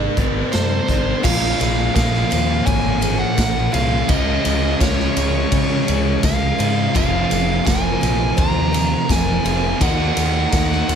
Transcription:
Already playing: C3 G#3 A#3 D#4 G#4 A#4
0.17 G#1 C4 A#4, kick, closed hi-hat
0.52 F#2 G#3 A#4 C5, snare, closed hi-hat
0.88 G#1 C4 D#4 A#4, kick, closed hi-hat
1.23 A#1 A#2 F3 A#3 C#4 F4 A#4 F5, kick, crash, tambourine
1.60 A#1 F3 A#3 G#4, ride, tambourine
1.95 A#1 A#2 F3 A#3 A#4 F5, kick, snare, ride, tambourine
2.15 snare
2.30 D#2 F3 A#3 C5, ride, tambourine
2.66 G#1 C#5 G#5, kick, ride
3.01 A#3 G#4, ride, tambourine
3.05 F3
3.19 F#5
3.38 A#1 A#2 F3 A#3 A#4, kick, snare, ride, tambourine
3.72 C2 A#2 F3 A#3 C#4 F4 G#4 F5, ride, tambourine
4.08 C#2 C#3 F3 G#3 C#4 F4 G#4 D#5, kick, ride, tambourine
4.45 C#2 G#3 C#4 G#4, ride, tambourine
4.80 C#2 C#3 G#3 C#4 A#4 C#5, kick, snare, ride, tambourine
4.99 snare
5.16 C#2 G#3 C#4 C#5, ride, tambourine
5.52 C#3 C#5, kick, ride
5.87 C#2 G#3 C#4 G#4, ride, tambourine
6.23 C#2 C#3 G#3 C#4 A#4 F5, kick, snare, ride, tambourine
6.58 G#2 C#3 F3 G#3 C#4 F4 G#4, ride, tambourine
6.94 F1 F2 C3 F3 A#3 C4 F4 C5 F5 A#5, kick, ride, tambourine
7.30 F1 C3 F3 G#4, ride, tambourine
7.65 F1 F2 C3 F3 A#4 G#5, kick, snare, ride, tambourine
8.01 A#1 C3 F3 C5, ride, tambourine
8.37 D#2 C5 A#5, kick, ride
8.72 C3 F3 G#4, ride, tambourine
9.09 F1 F2 C3 F3 A#4 G#5, kick, snare, ride, tambourine
9.44 F1 F2 C3 F3 A#3 C4 F4 G#4, ride, tambourine
9.80 D#2 D#3 A#3 C#4 D#4 F#4 D#5 F#5, kick, ride, tambourine
10.16 D#2 A#3 D#4 G#4, ride, tambourine
10.52 D#2 D#3 A#3 D#4 A#4, kick, snare, ride, tambourine
10.72 snare
10.88 D#2 A#3 D#4 C5, ride, tambourine

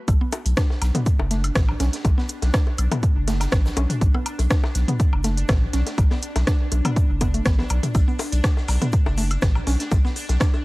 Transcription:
0.08 B1 D4, kick, closed hi-hat, high bongo, high woodblock, shaker
0.21 B3
0.32 closed hi-hat, high bongo, low woodblock, shaker
0.46 B1, closed hi-hat
0.57 D4, kick, cross-stick, snare, closed hi-hat, shaker
0.70 snare, high bongo
0.82 B1, snare, closed hi-hat, low woodblock, shaker
0.95 B3, closed hi-hat, mid tom, high bongo
1.06 kick, closed hi-hat, shaker
1.19 F#1, high bongo, low woodblock
1.31 A3, snare, closed hi-hat, shaker
1.44 closed hi-hat, high woodblock
1.55 A1, kick, cross-stick, snare, closed hi-hat, mid tom, high bongo, shaker
1.69 low woodblock
1.80 B1 C#4, snare, closed hi-hat, high bongo, shaker
1.93 snare, closed hi-hat
2.05 B1, kick, closed hi-hat, high bongo, low woodblock, shaker
2.18 B3, snare
2.29 closed hi-hat, shaker
2.42 B1, snare, closed hi-hat, high bongo
2.54 D4, kick, cross-stick, snare, closed hi-hat, low woodblock, shaker
2.67 high bongo
2.78 B1, closed hi-hat, high woodblock, shaker
2.92 B3, closed hi-hat, mid tom, high bongo, low woodblock
3.03 kick, closed hi-hat, shaker
3.16 F#1
3.28 A3, snare, closed hi-hat, high bongo, shaker
3.40 snare, closed hi-hat, low woodblock, shaker
3.52 A1, kick, cross-stick, snare, closed hi-hat, high bongo, shaker
3.65 snare, shaker
3.77 B1 C#4, closed hi-hat, high bongo, low woodblock, shaker
3.90 closed hi-hat, mid tom
4.01 B1, kick, closed hi-hat, shaker
4.14 B3, high bongo, high woodblock
4.26 closed hi-hat, low woodblock, shaker
4.39 B1, closed hi-hat, high bongo
4.50 D4, kick, cross-stick, snare, closed hi-hat, shaker
4.64 snare, high bongo, low woodblock
4.75 B1, snare, closed hi-hat, shaker
4.88 B3, closed hi-hat, mid tom
5.00 kick, closed hi-hat, high bongo, shaker
5.13 F#1, low woodblock
5.24 A3, snare, closed hi-hat, high bongo, shaker
5.37 closed hi-hat
5.49 A1, kick, cross-stick, snare, closed hi-hat, mid tom, high bongo, high woodblock, low woodblock, shaker
5.73 B1 C#4, snare, closed hi-hat, shaker
5.87 snare, closed hi-hat, high bongo
5.98 B1, kick, closed hi-hat, low woodblock, shaker
6.11 B3, snare, high bongo
6.22 closed hi-hat, shaker
6.36 B1, snare, closed hi-hat, high bongo, low woodblock
6.47 D4, kick, cross-stick, snare, closed hi-hat, shaker
6.72 B1, closed hi-hat, high bongo, shaker
6.85 B3, closed hi-hat, mid tom, high woodblock, low woodblock
6.96 kick, closed hi-hat, high bongo, shaker
7.10 F#1
7.21 B3, kick, closed hi-hat, high bongo, low woodblock, shaker
7.34 A3, closed hi-hat
7.45 A1 B3, kick, cross-stick, snare, closed hi-hat, shaker
7.58 B3, snare, high bongo
7.69 B1, closed hi-hat, low woodblock, shaker
7.83 closed hi-hat, mid tom, high bongo
7.95 B1, kick, closed hi-hat, high bongo, high woodblock, shaker, maracas
8.08 B3, maracas
8.19 open hi-hat, high bongo, low woodblock, maracas, shaker
8.32 B1, closed hi-hat, maracas
8.44 D4, kick, cross-stick, snare, closed hi-hat, shaker, maracas
8.57 snare, high bongo, maracas
8.68 B1, snare, open hi-hat, low woodblock, maracas, shaker
8.82 B3, closed hi-hat, mid tom, high bongo, maracas
8.92 kick, closed hi-hat, shaker, maracas
9.06 F#1, high bongo, low woodblock, maracas
9.17 A3, snare, open hi-hat, shaker, maracas
9.31 closed hi-hat, high woodblock, maracas
9.42 A1, kick, cross-stick, snare, closed hi-hat, mid tom, high bongo, shaker, maracas
9.55 low woodblock, maracas
9.67 B1 C#4, snare, open hi-hat, high bongo, maracas, shaker
9.80 snare, closed hi-hat, maracas
9.91 B1, kick, closed hi-hat, high bongo, low woodblock, maracas, shaker
10.05 B3, snare, maracas
10.16 open hi-hat, maracas, shaker
10.29 B1, snare, closed hi-hat, high bongo, maracas
10.40 D4, kick, cross-stick, snare, closed hi-hat, low woodblock, maracas, shaker
10.54 high bongo, maracas

